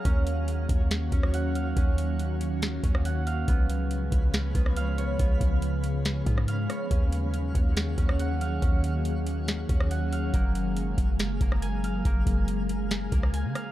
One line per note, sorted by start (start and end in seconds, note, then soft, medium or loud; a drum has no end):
0.00 2.62 A#3 medium
0.00 1.40 F5 medium
0.00 1.12 G#5 medium
0.05 0.67 D#2 loud
0.05 3.45 D#3 medium
0.05 3.45 F#3 medium
0.05 3.45 A#3 medium
0.05 1.12 C#4 loud
0.05 10.30 C#4 medium
0.05 3.45 C#4 medium
0.05 3.45 F#4 medium
0.05 3.45 F#4 loud
0.05 10.30 F5 medium
0.05 kick loud
0.05 closed hi-hat medium
0.27 closed hi-hat medium
0.48 closed hi-hat medium
0.69 1.10 D#2 loud
0.69 kick loud
0.69 closed hi-hat medium
0.91 snare loud
0.91 closed hi-hat medium
1.12 1.74 D#2 loud
1.12 1.77 C#4 medium
1.12 kick loud
1.12 closed hi-hat medium
1.23 cross-stick medium
1.34 2.95 F#5 loud
1.34 closed hi-hat medium
1.55 3.11 F5 medium
1.55 closed hi-hat medium
1.77 2.80 D#2 loud
1.77 2.83 C#4 loud
1.77 kick loud
1.77 closed hi-hat medium
1.98 closed hi-hat medium
2.19 closed hi-hat medium
2.41 closed hi-hat medium
2.62 snare loud
2.62 closed hi-hat medium
2.83 3.45 D#2 loud
2.83 5.73 C#4 medium
2.83 kick loud
2.83 closed hi-hat medium
2.95 cross-stick loud
3.05 4.66 F#5 loud
3.05 closed hi-hat medium
3.27 4.76 F5 medium
3.27 closed hi-hat medium
3.48 4.10 C#2 loud
3.48 6.87 C#3 medium
3.48 6.87 F3 medium
3.48 6.87 G#3 medium
3.48 6.87 B3 medium
3.48 4.55 B3 loud
3.48 13.72 G#4 loud
3.48 6.87 B4 medium
3.48 kick loud
3.48 closed hi-hat medium
3.70 closed hi-hat medium
3.91 closed hi-hat medium
4.12 4.53 C#2 loud
4.12 kick loud
4.12 closed hi-hat medium
4.34 snare loud
4.34 closed hi-hat medium
4.55 5.17 C#2 loud
4.55 5.19 B3 medium
4.55 kick loud
4.55 closed hi-hat medium
4.66 cross-stick medium
4.76 6.43 F5 loud
4.76 closed hi-hat medium
4.98 6.69 C#5 medium
4.98 closed hi-hat medium
5.19 5.40 C#2 loud
5.19 6.26 B3 loud
5.19 kick loud
5.19 closed hi-hat medium
5.41 6.23 C#2 loud
5.41 kick loud
5.41 closed hi-hat medium
5.62 closed hi-hat medium
5.84 closed hi-hat medium
6.05 snare loud
6.05 closed hi-hat medium
6.26 6.68 G#2 loud
6.26 9.37 B3 medium
6.26 kick loud
6.26 closed hi-hat medium
6.38 cross-stick medium
6.48 8.14 F5 loud
6.48 closed hi-hat medium
6.69 8.60 C#5 medium
6.69 cross-stick medium
6.69 closed hi-hat medium
6.91 7.53 D#2 loud
6.91 10.30 D#3 medium
6.91 13.72 F#3 medium
6.91 13.72 A#3 medium
6.91 7.98 C#4 medium
6.91 10.30 C#4 medium
6.91 10.30 F#4 medium
6.91 kick loud
6.91 closed hi-hat medium
7.12 closed hi-hat medium
7.34 closed hi-hat medium
7.55 7.96 D#2 loud
7.55 kick loud
7.55 closed hi-hat medium
7.77 snare loud
7.77 closed hi-hat medium
7.98 8.60 D#2 loud
7.98 8.62 C#4 medium
7.98 kick loud
7.98 closed hi-hat medium
8.09 cross-stick loud
8.19 9.80 F#5 loud
8.19 closed hi-hat medium
8.41 9.97 F5 medium
8.41 closed hi-hat medium
8.62 9.65 D#2 loud
8.62 9.69 C#4 loud
8.62 kick loud
8.62 closed hi-hat medium
8.84 closed hi-hat medium
9.05 closed hi-hat medium
9.27 closed hi-hat medium
9.48 snare loud
9.48 closed hi-hat medium
9.69 10.31 D#2 loud
9.69 12.59 C#4 medium
9.69 kick loud
9.69 closed hi-hat medium
9.80 cross-stick loud
9.91 11.52 F#5 loud
9.91 closed hi-hat medium
10.12 11.79 F5 medium
10.12 closed hi-hat medium
10.33 10.95 F#1 loud
10.33 13.72 C#3 medium
10.33 13.72 G#3 medium
10.33 11.40 A#3 loud
10.33 13.72 A#3 medium
10.33 13.72 G#4 medium
10.33 13.72 F5 medium
10.33 kick loud
10.33 closed hi-hat medium
10.55 closed hi-hat medium
10.77 closed hi-hat medium
10.98 11.39 F#1 loud
10.98 kick loud
10.98 closed hi-hat medium
11.19 snare loud
11.19 closed hi-hat medium
11.41 12.03 F#1 loud
11.41 12.05 A#3 medium
11.41 kick loud
11.41 closed hi-hat medium
11.52 cross-stick medium
11.62 13.12 G#5 loud
11.62 closed hi-hat medium
11.84 13.51 F5 medium
11.84 closed hi-hat medium
12.05 12.26 F#1 loud
12.05 13.12 A#3 loud
12.05 kick loud
12.05 closed hi-hat medium
12.26 13.09 F#1 loud
12.26 kick loud
12.26 closed hi-hat medium
12.48 closed hi-hat medium
12.69 closed hi-hat medium
12.91 snare loud
12.91 closed hi-hat medium
13.12 13.46 C#2 loud
13.12 13.72 A#3 medium
13.12 kick loud
13.12 closed hi-hat medium
13.23 cross-stick medium
13.34 13.72 G#5 loud
13.34 closed hi-hat medium
13.44 13.55 C#3 loud
13.55 13.72 F5 medium
13.55 cross-stick medium
13.55 closed hi-hat medium